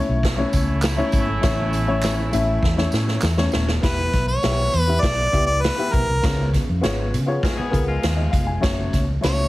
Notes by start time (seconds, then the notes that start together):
Already playing: A3 C#4 E4 C#5
0.09 B1
0.23 A3 C#4 E4, kick, snare, closed hi-hat
0.37 A3 C#4 E4 C#5
0.53 C#2, kick, closed hi-hat, tambourine
0.82 snare, clap, closed hi-hat, tambourine
0.97 A3 C#4 E4 C#5
1.12 G#1, kick, closed hi-hat, tambourine
1.41 A1 A2 A3 C#4 E4 C#5, kick, snare, closed hi-hat, tambourine
1.73 closed hi-hat, tambourine
1.87 A3 C#4 E4 C#5
2.02 snare, clap, closed hi-hat, tambourine
2.32 A1 A3 C#4 E4 E5, closed hi-hat, tambourine
2.62 E2, kick, snare
2.76 A3 C#4 E4 C#5, snare
2.92 A2, snare, tambourine
3.08 snare
3.22 E2, snare, clap, tambourine
3.37 A3 C#4 E4 C#5, snare
3.52 D#1, snare, tambourine
3.68 snare
3.81 E1 E3 B3 E4 G4 B4 E5, kick, snare, closed hi-hat
4.13 B1, kick, snare, closed hi-hat
4.28 C#5
4.43 B1 B3 E4 G4 E5, snare, closed hi-hat
4.74 E2, closed hi-hat
4.81 B4
4.87 B3 E4 G4 E5
5.01 B1 D5, kick, snare, closed hi-hat
5.32 C#2 B3 E4 G4 E5, kick, closed hi-hat
5.46 D5
5.61 B4, snare, closed hi-hat
5.77 B3 E4 G4 E5
5.92 B1 A#4, kick, closed hi-hat
6.09 C2
6.22 C#2 C#3 B3 F4 G#4 C#5, kick, snare, closed hi-hat
6.54 kick, snare, closed hi-hat
6.69 F2
6.81 G#1 B3 F4 G#4 C#5, snare, closed hi-hat
7.14 C#3, closed hi-hat
7.26 B3 F4 G#4 C#5
7.43 G#3 F4, kick, snare, closed hi-hat
7.57 B3 G#4, muted fingered electric bass stroke
7.71 C#2 B3 F4 G#4 A#4, kick, closed hi-hat
7.88 G#3 F4
8.03 D#2, snare, closed hi-hat
8.16 D#5
8.31 F1 F5, kick, closed hi-hat
8.47 G#5
8.61 F#1 A3 C#4 F#4 C#5, kick, snare, closed hi-hat
8.93 C#2, kick, snare, closed hi-hat
9.21 C#2 A3 C#4 F#4 C#5, snare, closed hi-hat